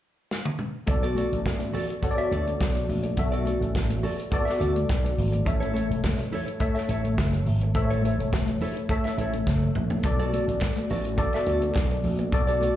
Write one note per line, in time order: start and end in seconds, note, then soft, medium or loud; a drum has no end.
0.31 snare medium
0.45 high tom medium
0.59 mid tom medium
0.87 1.22 B1 medium
0.87 1.74 B3 medium
0.87 1.74 F#4 medium
0.87 1.75 A4 medium
0.87 1.75 D5 medium
0.87 muted clean electric guitar stroke soft
0.87 kick loud
0.87 closed hi-hat medium
0.87 muted conga soft
1.03 1.15 F#4 medium
1.03 1.16 A4 medium
1.03 1.16 D5 medium
1.03 closed hi-hat soft
1.15 1.28 F#4 medium
1.15 1.28 A4 medium
1.15 1.29 D5 medium
1.15 closed hi-hat medium
1.15 muted conga soft
1.15 high conga medium
1.32 1.43 A1 medium
1.32 muted clean electric guitar stroke soft
1.32 closed hi-hat soft
1.46 1.68 A1 medium
1.46 kick medium
1.46 snare loud
1.59 muted clean electric guitar stroke soft
1.59 closed hi-hat medium
1.59 high conga medium
1.74 1.88 F#4 medium
1.74 1.88 A4 medium
1.74 1.87 D5 medium
1.74 open hi-hat medium
1.74 muted conga soft
1.74 low conga medium
1.88 muted clean electric guitar stroke soft
1.88 closed hi-hat soft
2.02 2.90 B3 medium
2.02 2.90 F#4 medium
2.02 2.90 A4 medium
2.02 2.10 C#5 medium
2.02 muted clean electric guitar stroke soft
2.02 kick medium
2.02 closed hi-hat medium
2.11 2.94 D5 medium
2.18 2.29 F#4 soft
2.18 2.28 A4 medium
2.18 2.28 E5 medium
2.18 closed hi-hat soft
2.31 2.54 D2 medium
2.31 2.46 F#4 medium
2.31 2.46 A4 medium
2.31 2.46 D5 medium
2.31 closed hi-hat medium
2.31 muted conga soft
2.47 muted clean electric guitar stroke soft
2.47 closed hi-hat soft
2.47 high conga medium
2.60 2.83 B1 medium
2.60 muted clean electric guitar stroke soft
2.60 kick loud
2.60 snare loud
2.60 muted conga soft
2.76 muted clean electric guitar stroke soft
2.76 closed hi-hat soft
2.89 3.11 A#1 medium
2.89 open hi-hat soft
2.89 muted conga soft
2.89 high conga medium
2.89 low conga medium
3.03 muted clean electric guitar stroke soft
3.03 closed hi-hat soft
3.03 high conga medium
3.17 3.52 B1 medium
3.17 4.04 B3 medium
3.17 4.05 F#4 medium
3.17 4.05 A4 medium
3.17 4.05 E5 medium
3.17 muted clean electric guitar stroke soft
3.17 kick loud
3.17 closed hi-hat medium
3.32 3.44 F#4 medium
3.32 3.45 A4 medium
3.32 3.45 D5 medium
3.32 closed hi-hat soft
3.45 3.57 F#4 medium
3.45 3.58 A4 medium
3.45 3.58 D5 medium
3.45 closed hi-hat medium
3.45 muted conga soft
3.45 high conga medium
3.61 3.71 A1 medium
3.61 muted clean electric guitar stroke medium
3.61 closed hi-hat soft
3.75 3.97 A1 medium
3.75 kick loud
3.75 snare medium
3.75 muted conga soft
3.89 muted clean electric guitar stroke soft
3.89 closed hi-hat medium
3.89 high conga medium
4.03 4.18 F#4 medium
4.03 4.18 A4 medium
4.03 4.17 D5 medium
4.03 open hi-hat soft
4.03 muted conga soft
4.03 low conga medium
4.18 muted clean electric guitar stroke soft
4.18 closed hi-hat soft
4.31 5.19 B3 medium
4.31 5.19 F#4 medium
4.31 5.20 A4 medium
4.31 5.20 D5 loud
4.31 muted clean electric guitar stroke soft
4.31 kick loud
4.31 closed hi-hat medium
4.31 muted conga soft
4.45 4.57 F#4 soft
4.45 4.57 A4 medium
4.45 4.56 E5 medium
4.45 snare soft
4.45 closed hi-hat soft
4.59 4.83 D2 medium
4.59 4.74 F#4 medium
4.59 4.75 A4 medium
4.59 4.74 D5 medium
4.59 closed hi-hat medium
4.75 muted clean electric guitar stroke soft
4.75 closed hi-hat soft
4.75 high conga medium
4.89 5.12 B1 medium
4.89 muted clean electric guitar stroke soft
4.89 kick loud
4.89 snare loud
4.89 muted conga soft
5.05 muted clean electric guitar stroke soft
5.05 closed hi-hat soft
5.18 5.40 G#1 medium
5.18 open hi-hat soft
5.18 high conga medium
5.18 low conga medium
5.32 muted clean electric guitar stroke soft
5.32 closed hi-hat soft
5.32 high conga medium
5.45 5.81 A1 medium
5.45 6.33 A3 medium
5.45 6.33 A4 medium
5.45 6.33 C#5 medium
5.45 6.34 E5 medium
5.45 muted clean electric guitar stroke soft
5.45 kick loud
5.45 closed hi-hat medium
5.45 muted conga soft
5.60 5.72 E4 medium
5.60 5.73 A4 medium
5.60 5.74 C#5 medium
5.60 closed hi-hat soft
5.73 5.86 E4 medium
5.73 5.86 A4 medium
5.73 5.87 C#5 medium
5.73 closed hi-hat medium
5.73 high conga medium
5.90 6.01 E1 medium
5.90 muted clean electric guitar stroke medium
5.90 closed hi-hat soft
6.04 6.26 E1 medium
6.04 kick loud
6.04 snare loud
6.18 muted clean electric guitar stroke soft
6.18 closed hi-hat medium
6.18 high conga medium
6.32 6.47 E4 medium
6.32 6.47 A4 medium
6.32 6.46 C#5 medium
6.32 open hi-hat medium
6.32 low conga medium
6.47 muted clean electric guitar stroke soft
6.47 closed hi-hat soft
6.60 7.47 A3 medium
6.60 7.48 A4 medium
6.60 7.48 C#5 medium
6.60 7.48 E5 medium
6.60 muted clean electric guitar stroke medium
6.60 kick loud
6.60 closed hi-hat medium
6.60 muted conga soft
6.75 6.87 E4 soft
6.75 6.86 A4 soft
6.75 6.86 E5 medium
6.75 snare soft
6.75 closed hi-hat soft
6.89 7.12 A1 medium
6.89 7.04 E4 medium
6.89 7.04 A4 medium
6.89 7.04 C#5 medium
6.89 closed hi-hat medium
6.89 muted conga soft
7.05 muted clean electric guitar stroke soft
7.05 closed hi-hat soft
7.05 high conga medium
7.18 7.41 F#1 medium
7.18 muted clean electric guitar stroke soft
7.18 kick loud
7.18 snare loud
7.18 muted conga soft
7.33 muted clean electric guitar stroke soft
7.33 closed hi-hat soft
7.46 7.75 G#1 medium
7.46 open hi-hat medium
7.46 muted conga soft
7.46 high conga medium
7.46 low conga medium
7.61 muted clean electric guitar stroke soft
7.61 closed hi-hat soft
7.61 high conga medium
7.74 8.10 A1 loud
7.74 8.62 A3 medium
7.74 8.62 A4 medium
7.74 7.82 C5 medium
7.74 8.63 E5 medium
7.74 muted clean electric guitar stroke soft
7.74 kick loud
7.74 closed hi-hat medium
7.82 8.66 C#5 medium
7.90 8.03 E4 medium
7.90 8.04 A4 medium
7.90 8.03 C#5 medium
7.90 closed hi-hat medium
8.02 8.16 E4 medium
8.02 8.16 A4 medium
8.02 8.16 C#5 medium
8.02 closed hi-hat medium
8.02 muted conga soft
8.02 high conga medium
8.18 8.29 E1 medium
8.18 muted clean electric guitar stroke medium
8.18 closed hi-hat soft
8.33 8.55 E1 medium
8.33 kick loud
8.33 snare loud
8.46 muted clean electric guitar stroke soft
8.46 closed hi-hat medium
8.46 high conga medium
8.61 8.76 E4 medium
8.61 8.76 A4 medium
8.61 8.76 C#5 medium
8.61 open hi-hat medium
8.61 low conga medium
8.77 muted clean electric guitar stroke soft
8.77 closed hi-hat soft
8.89 9.77 A3 medium
8.89 9.77 A4 medium
8.89 9.77 C#5 medium
8.89 9.77 E5 loud
8.89 muted clean electric guitar stroke soft
8.89 kick loud
8.89 closed hi-hat medium
9.04 9.16 E4 soft
9.04 9.15 A4 medium
9.04 9.15 E5 medium
9.04 snare soft
9.04 closed hi-hat soft
9.18 9.40 A1 medium
9.18 9.33 E4 medium
9.18 9.34 A4 medium
9.18 9.34 C#5 medium
9.18 closed hi-hat medium
9.18 muted conga soft
9.18 high conga soft
9.33 muted clean electric guitar stroke soft
9.33 closed hi-hat soft
9.33 high conga medium
9.47 9.69 F#1 medium
9.47 muted clean electric guitar stroke soft
9.47 kick loud
9.47 snare medium
9.63 muted clean electric guitar stroke soft
9.75 9.98 A#1 medium
9.75 mid tom medium
9.75 high conga medium
9.75 low conga medium
9.90 muted clean electric guitar stroke medium
9.90 floor tom medium
9.90 high conga medium
10.03 10.38 B1 loud
10.03 10.91 B3 medium
10.03 10.91 F#4 medium
10.03 10.91 A4 medium
10.03 10.92 D5 medium
10.03 muted clean electric guitar stroke soft
10.03 kick loud
10.03 closed hi-hat medium
10.03 muted conga soft
10.19 10.32 F#4 medium
10.19 10.32 A4 medium
10.19 10.32 D5 medium
10.19 closed hi-hat medium
10.32 10.44 F#4 medium
10.32 10.44 A4 medium
10.32 10.45 D5 medium
10.32 closed hi-hat medium
10.32 high conga medium
10.48 10.58 A1 medium
10.48 muted clean electric guitar stroke soft
10.48 closed hi-hat soft
10.61 kick loud
10.61 snare loud
10.61 clap medium
10.61 muted conga soft
10.77 muted clean electric guitar stroke soft
10.77 closed hi-hat medium
10.77 high conga medium
10.90 11.24 A1 medium
10.90 11.05 F#4 medium
10.90 11.05 A4 medium
10.90 11.04 D5 medium
10.90 open hi-hat medium
10.90 muted conga soft
10.90 low conga medium
11.05 muted clean electric guitar stroke soft
11.05 closed hi-hat soft
11.17 12.04 B3 medium
11.17 12.05 F#4 medium
11.17 12.05 A4 medium
11.17 12.05 D5 medium
11.17 muted clean electric guitar stroke soft
11.17 kick loud
11.17 closed hi-hat medium
11.17 muted conga soft
11.33 11.45 F#4 soft
11.33 11.44 A4 medium
11.33 11.44 E5 medium
11.33 snare soft
11.33 closed hi-hat soft
11.46 11.69 D2 medium
11.46 11.62 F#4 medium
11.46 11.62 A4 medium
11.46 11.62 D5 medium
11.46 closed hi-hat medium
11.46 muted conga soft
11.62 muted clean electric guitar stroke soft
11.62 closed hi-hat soft
11.62 high conga medium
11.74 11.98 B1 medium
11.74 muted clean electric guitar stroke soft
11.74 kick loud
11.74 snare loud
11.74 clap loud
11.74 muted conga soft
11.91 muted clean electric guitar stroke soft
11.91 closed hi-hat soft
12.04 12.26 A#1 medium
12.04 open hi-hat soft
12.04 high conga medium
12.04 low conga medium
12.19 muted clean electric guitar stroke medium
12.19 closed hi-hat soft
12.19 high conga medium
12.32 12.67 B1 medium
12.32 12.76 B3 medium
12.32 12.76 F#4 medium
12.32 12.76 A4 medium
12.32 12.76 D5 medium
12.32 muted clean electric guitar stroke soft
12.32 kick loud
12.32 closed hi-hat medium
12.47 12.60 F#4 medium
12.47 12.60 A4 medium
12.47 12.60 D5 medium
12.47 closed hi-hat medium
12.61 12.72 F#4 medium
12.61 12.73 A4 medium
12.61 12.73 D5 medium
12.61 closed hi-hat medium
12.61 high conga medium